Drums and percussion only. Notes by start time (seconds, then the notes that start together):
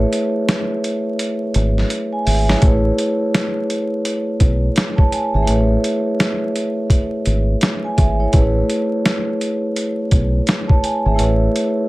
0.13 closed hi-hat
0.48 snare, closed hi-hat
0.84 closed hi-hat
1.19 closed hi-hat
1.54 closed hi-hat
1.78 snare
1.90 closed hi-hat
2.27 open hi-hat
2.49 snare
2.62 kick, closed hi-hat
2.98 closed hi-hat
3.34 snare, closed hi-hat
3.70 closed hi-hat
4.05 closed hi-hat
4.40 kick, closed hi-hat
4.76 snare, closed hi-hat
4.98 kick
5.12 closed hi-hat
5.47 closed hi-hat
5.84 closed hi-hat
6.20 snare, closed hi-hat
6.56 closed hi-hat
6.90 kick, closed hi-hat
7.26 closed hi-hat
7.61 snare, closed hi-hat
7.98 kick, closed hi-hat
8.33 kick, closed hi-hat
8.70 closed hi-hat
9.05 snare, closed hi-hat
9.41 closed hi-hat
9.76 closed hi-hat
10.11 kick, closed hi-hat
10.47 snare, closed hi-hat
10.69 kick
10.84 closed hi-hat
11.19 closed hi-hat
11.56 closed hi-hat